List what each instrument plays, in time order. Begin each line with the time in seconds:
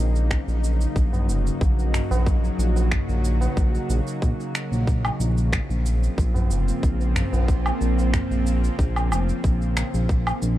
Already playing: analog synth bass A#1, synth drone C#3 F#3 A#3 D#4 F#4
0.16 cabasa
0.31 finger snap, kick, cabasa
0.48 analog synth bass A#1, cabasa
0.64 cabasa
0.81 cabasa
0.96 analog synth bass A#1, kick, cabasa
1.13 tabla na, tabla ge, cabasa
1.29 analog synth bass F1, cabasa
1.47 cabasa
1.61 analog synth bass A#1, kick, cabasa
1.78 tabla tin, cabasa
1.94 finger snap, tabla ge, cabasa
2.11 analog synth bass A#1, tabla na, tabla tin, cabasa
2.26 kick, cabasa
2.44 cabasa
2.58 analog synth bass A#1, cabasa
2.76 tabla na, cabasa
2.91 finger snap, kick, tabla ge, cabasa
3.09 analog synth bass A#1, cabasa
3.25 cabasa
3.41 tabla na, cabasa
3.57 analog synth bass A#1, kick, cabasa
3.75 cabasa
3.90 analog synth bass A#1, tabla tin, cabasa
4.07 cabasa
4.22 analog synth bass A#1, kick, cabasa
4.40 cabasa
4.55 finger snap, cabasa
4.72 analog synth bass A#1, cabasa
4.87 synth drone F3 A#3 C4 F4, kick, cabasa
5.05 cabasa, low woodblock
5.20 analog synth bass A#1, cabasa
5.38 cabasa
5.53 finger snap, kick, cabasa
5.70 analog synth bass A#1, cabasa
5.86 cabasa
6.03 cabasa
6.18 analog synth bass A#1, kick, cabasa
6.34 tabla na, tabla ge, cabasa
6.51 analog synth bass F1, cabasa
6.68 cabasa
6.83 analog synth bass A#1, kick, cabasa
7.00 tabla tin, cabasa
7.16 finger snap, tabla ge, cabasa
7.32 analog synth bass A#1, tabla na, tabla tin, cabasa
7.48 kick, cabasa
7.66 cabasa, low woodblock
7.81 analog synth bass A#1, cabasa
7.97 tabla na, cabasa
8.13 finger snap, kick, tabla ge, cabasa
8.31 analog synth bass A#1, cabasa
8.47 cabasa
8.64 cabasa
8.78 analog synth bass A#1, kick, cabasa
8.96 cabasa, low woodblock
9.11 analog synth bass F1, tabla tin, cabasa, low woodblock
9.29 cabasa
9.44 analog synth bass A#1, kick, cabasa
9.62 cabasa
9.77 finger snap, cabasa
9.94 analog synth bass A#1, cabasa
10.09 synth drone D#3 F#3 A#3 C#4 F#4, kick, cabasa
10.27 cabasa, low woodblock
10.42 analog synth bass A#1, cabasa